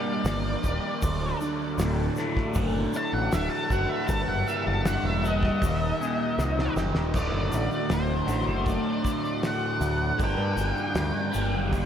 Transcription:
0.00 0.97 G3 medium
0.00 1.02 G3 medium
0.00 0.23 A#3 medium
0.00 0.97 A#3 medium
0.00 0.96 D4 medium
0.00 2.60 D4 medium
0.00 0.97 A#4 medium
0.00 1.37 D5 loud
0.24 0.55 G1 medium
0.24 1.01 A#3 medium
0.24 snare loud
0.24 open hi-hat medium
0.24 shaker loud
0.63 0.79 D#1 medium
0.63 1.01 G4 medium
0.63 kick medium
0.63 shaker medium
1.02 1.32 D1 loud
1.02 2.93 D2 medium
1.02 4.06 F#3 medium
1.02 4.07 A3 medium
1.02 4.06 D4 medium
1.02 4.06 A4 medium
1.02 kick loud
1.02 open hi-hat medium
1.02 shaker loud
1.41 2.55 D3 medium
1.41 shaker medium
1.78 2.08 D1 medium
1.78 2.93 A2 medium
1.78 snare loud
1.78 open hi-hat medium
1.78 shaker loud
2.16 4.09 A3 medium
2.16 snare soft
2.16 shaker medium
2.37 kick medium
2.37 snare soft
2.54 2.85 F#1 loud
2.54 3.32 D3 medium
2.54 kick loud
2.54 open hi-hat medium
2.54 shaker loud
2.93 4.08 A2 medium
2.93 3.14 A5 loud
2.93 shaker medium
3.13 3.28 A1 medium
3.13 3.32 F#5 medium
3.32 3.47 D1 loud
3.32 4.09 D3 medium
3.32 3.50 E5 loud
3.32 snare loud
3.32 open hi-hat medium
3.32 shaker loud
3.50 3.72 A5 medium
3.70 3.85 F#1 medium
3.70 4.09 F#4 medium
3.70 3.89 F#5 medium
3.70 kick medium
3.70 shaker medium
3.89 4.07 E5 loud
4.06 4.24 G1 loud
4.06 5.61 G2 medium
4.06 5.58 D3 medium
4.06 7.10 G3 medium
4.06 7.10 A#3 medium
4.06 7.10 A#4 medium
4.06 4.28 A5 loud
4.06 kick loud
4.06 open hi-hat medium
4.06 shaker loud
4.28 4.43 F#1 medium
4.28 4.46 F#5 medium
4.48 5.62 A#3 medium
4.48 4.65 E5 medium
4.48 shaker medium
4.67 4.96 F#1 medium
4.67 4.87 A5 loud
4.85 5.61 G3 medium
4.85 5.04 F#5 loud
4.85 snare loud
4.85 open hi-hat medium
4.85 shaker loud
5.03 5.49 E1 loud
5.03 5.24 E5 medium
5.24 5.62 D4 medium
5.24 6.74 D#5 loud
5.24 shaker medium
5.43 kick medium
5.43 snare soft
5.61 5.92 D#1 loud
5.61 7.13 D#2 medium
5.61 7.12 D#4 medium
5.61 kick loud
5.61 open hi-hat medium
5.61 shaker loud
6.01 7.14 A#2 medium
6.01 shaker medium
6.38 6.68 C2 medium
6.38 7.15 D#3 medium
6.38 snare medium
6.38 shaker loud
6.59 snare medium
6.76 6.93 F#1 medium
6.76 7.14 G4 medium
6.76 snare medium
6.76 shaker medium
6.94 7.12 D#1 medium
6.94 snare medium
7.13 7.29 D1 loud
7.13 8.26 D2 medium
7.13 8.27 A2 medium
7.13 8.27 D3 medium
7.13 10.17 F#3 medium
7.13 10.17 A3 medium
7.13 8.26 A3 medium
7.13 11.86 D4 medium
7.13 8.26 F#4 medium
7.13 10.17 A4 medium
7.13 7.54 D5 medium
7.13 kick loud
7.13 crash loud
7.13 shaker medium
7.33 7.48 F#1 medium
7.52 7.68 A1 medium
7.52 open hi-hat soft
7.52 shaker medium
7.56 7.93 D5 medium
7.72 shaker soft
7.90 8.20 D1 medium
7.90 8.64 C5 medium
7.90 snare loud
7.90 open hi-hat medium
7.90 shaker medium
8.27 8.43 A1 medium
8.27 10.17 D2 medium
8.27 10.17 A2 medium
8.27 10.17 D3 medium
8.27 10.17 A3 medium
8.27 10.17 F#4 medium
8.27 open hi-hat medium
8.27 shaker medium
8.47 8.78 F#1 medium
8.66 9.41 D5 medium
8.66 kick medium
8.66 open hi-hat medium
8.66 shaker medium
9.04 kick medium
9.04 open hi-hat soft
9.04 shaker medium
9.25 shaker soft
9.43 10.18 F#5 medium
9.43 snare medium
9.43 open hi-hat medium
9.43 shaker medium
9.81 10.11 D2 medium
9.81 open hi-hat soft
9.81 shaker medium
10.17 10.35 G1 loud
10.17 11.31 G2 medium
10.17 11.31 D3 medium
10.17 11.32 G3 medium
10.17 11.86 G3 medium
10.17 11.86 A#3 medium
10.17 11.32 A#3 medium
10.17 11.32 D4 medium
10.17 11.30 G4 medium
10.17 11.86 A#4 medium
10.17 kick loud
10.17 open hi-hat medium
10.17 shaker medium
10.24 11.86 G5 medium
10.38 10.53 G2 medium
10.56 10.72 G1 medium
10.56 open hi-hat soft
10.56 shaker medium
10.77 shaker soft
10.95 11.11 D2 medium
10.95 snare loud
10.95 open hi-hat medium
10.95 shaker medium
11.31 11.54 G1 medium
11.31 11.86 G2 medium
11.31 11.86 D3 medium
11.31 11.86 G3 medium
11.31 11.86 A#3 medium
11.31 11.86 D4 medium
11.31 11.86 G4 medium
11.31 open hi-hat medium
11.31 shaker medium
11.54 11.86 F#1 medium
11.73 kick medium
11.73 open hi-hat medium
11.73 shaker medium

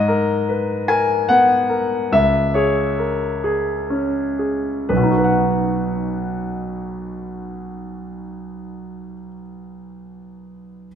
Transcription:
0.00 2.07 G#2 soft
0.00 0.84 D#5 medium
0.08 0.72 A#4 soft
0.48 0.88 B4 soft
0.88 1.54 A#4 soft
0.88 1.26 G#5 medium
1.29 1.95 B3 soft
1.29 2.07 F#5 medium
1.69 2.11 A#4 soft
2.12 4.86 C#2 soft
2.12 2.52 E5 medium
2.54 3.26 G#4 soft
2.54 4.36 C#5 soft
2.99 3.44 A#4 soft
3.44 4.20 G#4 soft
3.90 4.70 C#4 soft
4.39 4.90 G#4 soft
4.89 9.12 B1 soft
4.89 5.16 B4 soft
4.97 9.19 B2 soft
5.03 9.26 D#4 soft
5.10 9.33 F#4 soft
5.17 9.40 B4 soft
5.24 9.47 F#5 soft

